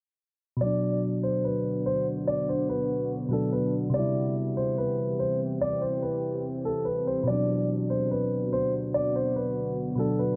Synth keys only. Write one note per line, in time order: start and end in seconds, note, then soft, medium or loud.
0.57 3.26 B2 medium
0.61 3.28 F#3 medium
0.66 3.30 D4 medium
3.29 3.93 B2 soft
3.29 3.94 F#3 soft
3.33 3.95 D4 medium
3.90 7.21 C3 medium
3.94 7.24 G3 medium
3.99 7.26 E4 medium
7.23 9.92 B2 medium
7.28 9.95 F#3 medium
7.32 9.97 D4 medium
9.95 10.36 B2 medium
9.95 10.36 F#3 soft
10.00 10.36 D4 medium